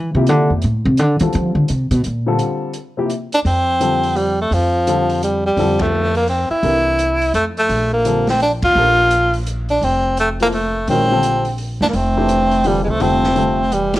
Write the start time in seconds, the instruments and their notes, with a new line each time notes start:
Already playing: upright bass E3
0.15 upright bass C3, grand piano C3 F3 A#3 E4 G4
0.27 upright bass D3, closed hi-hat
0.50 upright bass F2
0.62 upright bass A2, closed hi-hat
0.85 upright bass C3
0.97 upright bass D3, closed hi-hat
1.20 grand piano D3 G3 C4 F4 A4, upright bass E3, closed hi-hat
1.33 upright bass F3, closed hi-hat
1.55 upright bass D3
1.68 upright bass C3, closed hi-hat
1.91 upright bass B2, closed hi-hat
2.04 upright bass A#2, closed hi-hat
2.26 grand piano D3 G3 C4 F4 A4
2.39 closed hi-hat
2.74 closed hi-hat
2.97 grand piano C3 F3 A#3 E4 G4
3.10 closed hi-hat
3.32 tenor saxophone D4, closed hi-hat
3.45 upright bass F2, tenor saxophone C4, open hi-hat
3.80 grand piano D3 G3 C4 F4 A4, closed hi-hat
4.03 open hi-hat
4.16 tenor saxophone G3, open hi-hat
4.41 tenor saxophone A3
4.51 upright bass F2, tenor saxophone F3, open hi-hat
4.87 grand piano D3 G3 C4 F4 A4, closed hi-hat
5.10 open hi-hat
5.23 tenor saxophone G3, closed hi-hat
5.46 tenor saxophone G3
5.57 upright bass F2, grand piano D3 G3 C4 F4 A4, open hi-hat
5.79 tenor saxophone A3, kick, ride
6.15 tenor saxophone A#3, open hi-hat
6.28 tenor saxophone C4, open hi-hat
6.50 tenor saxophone E4, muted upright bass stroke
6.63 upright bass C2, grand piano E3 D4 G4 A4 A#4, open hi-hat
6.99 closed hi-hat
7.22 open hi-hat
7.34 upright bass F2, tenor saxophone A3, closed hi-hat
7.57 tenor saxophone A3, open hi-hat
7.69 upright bass A#1, open hi-hat
7.93 tenor saxophone A#3
8.05 grand piano D3 G3 C4 F4 A4, closed hi-hat
8.27 tenor saxophone C4, snare, open hi-hat
8.40 tenor saxophone D4, open hi-hat
8.62 upright bass F2, tenor saxophone F4, kick, ride
8.75 upright bass A#1, grand piano F3 D4 G4 A4 A#4
9.11 closed hi-hat
9.34 open hi-hat
9.47 closed hi-hat
9.69 tenor saxophone D4, open hi-hat
9.81 upright bass F1, tenor saxophone C4, open hi-hat
10.17 tenor saxophone A3, closed hi-hat
10.40 grand piano F3 A#3 E4 A4 C5, tenor saxophone A#3, open hi-hat
10.52 tenor saxophone A3, open hi-hat
10.87 upright bass A#1, grand piano D#3 G#3 C#4 F#4 A#4, tenor saxophone C4, open hi-hat
11.11 grand piano D3 G3 C4 F4 A4
11.23 closed hi-hat
11.45 open hi-hat
11.58 open hi-hat
11.81 upright bass F#1, bass clarinet A#3, tenor saxophone D4, snare
11.89 bass clarinet G3, tenor saxophone A#3
11.93 upright bass F1, bass clarinet A3, tenor saxophone C4, open hi-hat
12.17 grand piano E3 D4 G4 A4 C5
12.29 closed hi-hat
12.51 open hi-hat
12.64 grand piano D3 G3 C4 F4 A4, bass clarinet E3, tenor saxophone G3, open hi-hat
12.83 upright bass C2, bass clarinet E3, tenor saxophone G#3
12.90 bass clarinet F3, tenor saxophone A3
13.00 upright bass F1, grand piano D3 G3 C4 F4 A4, bass clarinet A3, tenor saxophone C4, open hi-hat
13.23 snare
13.35 grand piano D3 G3 C4 F4 A4, open hi-hat
13.72 bass clarinet E3, tenor saxophone G3, closed hi-hat
13.94 bass clarinet E3, tenor saxophone G3, snare, ride